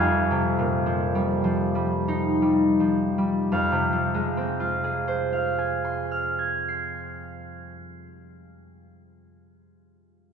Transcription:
0.00 3.57 F1 medium
0.00 3.51 F2 loud
0.00 0.85 F3 medium
0.00 1.14 G3 medium
0.00 0.18 G#3 medium
0.00 2.07 D#4 medium
0.00 0.47 C5 medium
0.00 2.10 D5 medium
0.00 2.64 D#5 medium
0.00 3.51 F5 medium
0.00 2.63 G5 loud
0.00 3.66 G#5 loud
0.31 3.58 C3 medium
0.59 1.06 A#2 medium
0.86 1.43 F3 medium
1.15 1.74 G3 medium
1.44 2.79 F3 medium
1.75 2.41 G3 medium
2.08 3.58 D#4 medium
2.42 3.17 G3 medium
2.80 3.91 F3 medium
3.18 3.58 G3 medium
3.52 7.74 F2 medium
3.52 5.32 F5 medium
3.72 7.93 C3 medium
3.92 8.14 F3 medium
4.14 8.36 G#3 medium
4.37 8.59 C4 medium
4.60 8.81 F4 medium
4.84 8.84 G#4 medium
5.08 8.84 C5 medium
5.33 8.84 F5 medium
5.59 8.84 G#5 medium
5.85 8.84 C6 medium
6.11 8.84 F6 medium
6.39 8.84 G#6 medium
6.68 8.84 C7 medium

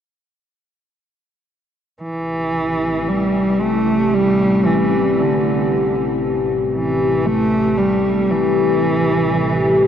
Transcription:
2.00 9.87 A1 medium
2.00 9.87 C3 medium
2.00 3.10 E3 medium
3.08 3.62 G3 medium
3.60 4.16 A3 medium
4.14 4.68 G3 medium
4.66 5.21 E3 medium
5.20 5.98 D3 medium
6.75 7.27 E3 medium
7.26 7.79 A3 medium
7.78 8.32 G3 medium
8.31 9.85 E3 medium

